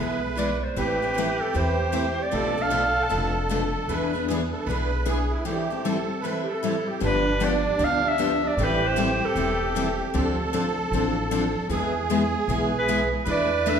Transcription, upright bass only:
0.00 0.61 B1 medium
0.76 1.39 A1 medium
1.55 2.17 E2 medium
2.33 2.95 B1 medium
3.11 3.74 F1 medium
3.88 4.51 E2 medium
4.66 5.29 B1 medium
7.01 7.64 G1 medium
7.79 8.42 D2 medium
8.57 9.20 A1 medium
9.35 9.98 E1 medium
10.15 10.77 D2 medium
10.91 11.54 A1 medium
11.69 12.32 E2 medium
12.47 13.10 B1 medium
13.26 13.80 E2 medium

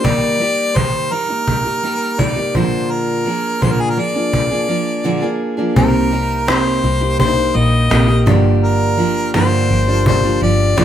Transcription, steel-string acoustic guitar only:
0.04 0.40 D#3 medium
0.04 0.38 G3 medium
0.04 0.39 A#3 medium
0.04 0.39 D#4 medium
0.04 0.40 G4 medium
0.39 0.74 G3 medium
0.39 0.75 A#3 medium
0.39 0.75 D#4 medium
0.39 0.75 G4 medium
0.75 1.12 D#3 medium
0.75 1.10 G3 medium
0.75 1.11 A#3 medium
0.75 1.11 D#4 medium
0.75 1.12 G4 medium
1.11 1.29 G3 soft
1.11 1.30 A#3 medium
1.11 1.29 D#4 medium
1.11 1.27 G4 medium
1.29 1.66 A#3 soft
1.29 1.65 D#4 soft
1.29 1.63 G4 soft
1.65 1.82 A#3 soft
1.65 1.83 D#4 soft
1.65 1.83 G4 medium
1.83 2.18 G3 medium
1.83 2.18 A#3 medium
1.83 2.18 D#4 medium
1.83 2.19 G4 medium
2.19 2.37 D#3 medium
2.19 2.37 G3 medium
2.19 2.37 A#3 medium
2.19 2.36 D#4 medium
2.19 2.35 G4 medium
2.36 2.54 A#3 soft
2.36 2.55 D#4 soft
2.36 2.54 G4 soft
2.54 3.26 A#2 medium
2.54 3.26 D3 medium
2.54 3.24 F3 medium
2.54 3.26 A#3 medium
2.54 3.26 D4 medium
2.54 3.26 G#4 medium
3.25 3.61 F3 medium
3.25 3.61 A#3 medium
3.25 3.61 D4 medium
3.25 3.61 G#4 medium
3.61 3.97 A#2 medium
3.61 3.98 D3 medium
3.61 3.95 F3 medium
3.61 3.96 A#3 medium
3.61 3.97 D4 medium
3.61 3.97 G#4 medium
3.96 4.15 F3 medium
3.96 4.15 A#3 medium
3.96 4.14 D4 medium
3.96 4.14 G#4 medium
4.15 4.51 F3 soft
4.15 4.51 A#3 soft
4.15 4.50 D4 soft
4.15 4.49 G#4 soft
4.51 4.67 F3 soft
4.51 4.68 A#3 soft
4.51 4.68 D4 soft
4.51 4.69 G#4 soft
4.68 5.03 F3 medium
4.68 5.04 A#3 medium
4.68 5.04 D4 medium
4.68 5.04 G#4 medium
5.04 5.23 A#2 medium
5.04 5.23 D3 medium
5.04 5.23 F3 medium
5.04 5.22 A#3 medium
5.04 5.21 D4 medium
5.04 5.21 G#4 medium
5.22 5.58 F3 soft
5.22 5.57 A#3 soft
5.22 5.57 D4 medium
5.22 5.56 G#4 medium
5.57 5.76 F3 soft
5.57 5.76 A#3 soft
5.57 5.76 D4 soft
5.57 5.76 G#4 medium
5.76 6.12 C3 medium
5.76 6.10 G3 medium
5.76 6.11 A#3 medium
5.76 6.11 D#4 medium
5.76 6.12 G4 medium
6.11 6.46 G3 medium
6.11 6.47 A#3 medium
6.11 6.47 D#4 medium
6.11 6.47 G4 medium
6.47 6.83 C3 medium
6.47 6.82 G3 medium
6.47 6.82 A#3 medium
6.47 6.83 D#4 medium
6.47 6.84 G4 medium
6.83 7.01 G3 medium
6.83 7.02 A#3 medium
6.83 7.01 D#4 medium
6.83 7.00 G4 medium
7.01 7.37 A#3 soft
7.01 7.36 D#4 soft
7.01 7.35 G4 soft
7.36 7.53 A#3 soft
7.36 7.55 D#4 soft
7.36 7.55 G4 soft
7.54 7.89 G3 medium
7.54 7.90 A#3 medium
7.54 7.90 D#4 medium
7.54 7.90 G4 medium
7.90 8.08 C3 medium
7.90 8.09 G3 medium
7.90 8.09 A#3 medium
7.90 8.08 D#4 medium
7.90 8.07 G4 medium
8.08 8.25 A#3 soft
8.08 8.27 D#4 soft
8.08 8.26 G4 medium
8.26 8.98 G2 medium
8.26 8.98 D3 medium
8.26 8.96 F3 medium
8.26 8.98 A#3 medium
8.26 8.97 D4 medium
8.26 8.99 G4 medium
8.97 9.33 F3 medium
8.97 9.34 A#3 medium
8.97 9.34 D4 medium
8.97 9.34 G4 medium
9.34 9.70 G2 medium
9.34 9.70 D3 medium
9.34 9.69 F3 medium
9.34 9.69 A#3 medium
9.34 9.70 D4 medium
9.34 9.71 G4 medium
9.70 9.88 F3 medium
9.70 9.88 A#3 medium
9.70 9.87 D4 medium
9.70 9.86 G4 medium
9.87 10.24 F3 soft
9.87 10.24 A#3 soft
9.87 10.23 D4 soft
9.87 10.22 G4 medium
10.23 10.39 F3 soft
10.23 10.40 A#3 soft
10.23 10.41 D4 medium
10.23 10.41 G4 medium
10.41 10.76 F3 medium
10.41 10.76 A#3 medium
10.41 10.76 D4 medium
10.41 10.77 G4 medium
10.76 10.85 G2 medium
10.76 10.85 D3 medium
10.76 10.85 F3 medium
10.76 10.85 A#3 medium
10.76 10.85 D4 medium
10.76 10.85 G4 medium

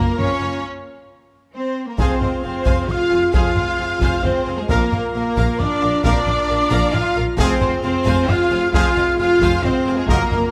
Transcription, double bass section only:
0.18 0.26 F#1 medium
0.40 0.48 F#1 medium
1.99 2.07 F1 loud
2.22 2.30 F1 medium
2.44 2.52 F1 medium
2.66 2.74 F1 medium
2.89 2.97 F1 medium
3.12 3.20 F1 medium
3.34 3.42 F1 loud
3.56 3.64 F1 medium
3.79 3.87 F1 medium
4.01 4.09 F1 loud
4.23 4.31 F1 medium
4.47 4.55 F1 medium
4.69 4.77 A#1 loud
4.91 4.99 A#1 medium
5.15 5.23 A#1 medium
5.37 5.45 A#1 loud
5.59 5.67 A#1 medium
5.82 5.90 A#1 medium
6.04 6.12 A#1 loud
6.26 6.34 A#1 medium
6.49 6.57 A#1 medium
6.71 6.79 A#1 loud
6.94 7.02 A#1 medium
7.17 7.25 A#1 medium
7.38 7.46 F1 loud
7.61 7.69 F1 medium
7.83 7.91 F1 medium
8.05 8.13 F1 loud
8.28 8.36 F1 medium
8.51 8.59 F1 medium
8.74 8.82 F1 loud
8.95 9.03 F1 medium
9.18 9.26 F1 medium
9.39 9.47 F1 loud
9.63 9.71 F1 medium
9.85 9.93 F1 medium
10.08 10.16 F#1 loud
10.30 10.38 F#1 medium

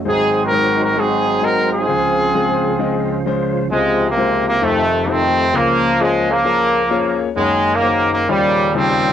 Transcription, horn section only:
0.07 0.94 C4 medium
0.07 0.42 D#4 medium
0.07 0.42 G#4 loud
0.44 0.97 D#4 medium
0.44 1.31 F#4 medium
0.44 0.78 A#4 loud
0.82 0.97 A#4 loud
0.98 1.71 C4 medium
0.98 1.85 D#4 medium
0.98 1.44 G#4 loud
1.43 1.72 A#4 loud
1.72 3.22 C4 medium
1.72 3.22 F4 medium
1.72 3.22 G#4 loud
3.72 4.60 C3 medium
3.72 4.09 F3 medium
3.72 4.06 G#3 medium
4.10 4.60 F3 medium
4.10 4.46 A#3 loud
4.47 4.62 A#3 loud
4.64 5.51 C3 medium
4.64 5.09 D#3 medium
4.64 5.09 A3 loud
5.10 5.52 D#3 medium
5.10 5.52 A3 medium
5.10 5.55 C4 loud
5.56 6.29 F3 medium
5.56 6.01 A#3 loud
6.01 6.29 G#3 loud
6.30 7.17 F3 medium
6.30 7.21 A#3 loud
7.37 7.73 C#3 medium
7.37 7.73 D#3 medium
7.37 7.72 G#3 loud
7.74 8.25 C#3 medium
7.74 8.25 D#3 medium
7.74 8.12 A#3 loud
8.13 8.28 A#3 loud
8.29 9.13 A#2 medium
8.29 9.13 C#3 medium
8.29 8.74 G3 loud
8.75 9.13 F3 medium
8.75 9.13 G3 medium
8.75 9.13 C4 loud

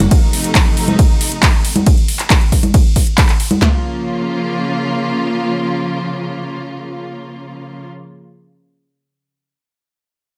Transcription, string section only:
0.11 1.85 C3 medium
0.11 1.85 F3 medium
0.11 1.85 A3 medium
0.11 1.85 D#4 medium
3.62 7.88 C#3 medium
3.62 7.88 F3 medium
3.62 7.88 A#3 medium
3.62 7.88 F4 medium

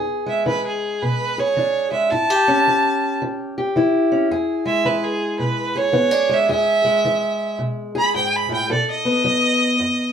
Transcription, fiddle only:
0.29 0.46 E5 medium
0.47 0.64 B4 medium
0.67 1.04 G#4 medium
1.02 1.41 B4 medium
1.40 1.92 C#5 medium
1.92 2.12 E5 medium
2.11 3.17 A5 medium
4.67 4.88 E5 medium
4.86 5.05 B4 medium
5.04 5.39 G#4 medium
5.39 5.79 B4 medium
5.77 6.35 C#5 medium
6.33 6.49 E5 medium
6.50 7.56 E5 loud
7.98 8.15 B5 loud
8.16 8.37 G5 medium
8.36 8.52 B5 medium
8.54 8.71 G5 medium
8.72 8.88 D5 medium
8.91 10.12 D#5 loud

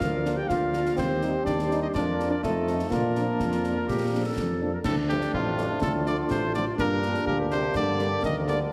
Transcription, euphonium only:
0.00 0.38 F4 medium
0.36 0.48 G4 medium
0.49 0.94 F4 loud
0.96 1.46 C4 loud
1.45 1.81 D4 loud
1.82 1.87 D#4 medium
1.95 2.28 D4 medium
2.31 2.36 D4 medium
2.43 2.88 A3 medium
2.90 4.56 A#3 medium
4.83 4.95 A2 medium
5.10 5.21 G2 medium
5.33 5.83 F2 medium
5.82 6.06 A2 medium
6.06 6.28 D3 medium
6.28 6.40 C3 medium
6.55 6.65 D3 medium
6.78 7.24 A#2 medium
7.27 7.49 A#2 medium
7.52 7.74 C3 medium
7.76 8.21 D3 medium
8.24 8.46 D#3 medium
8.47 8.73 D3 medium

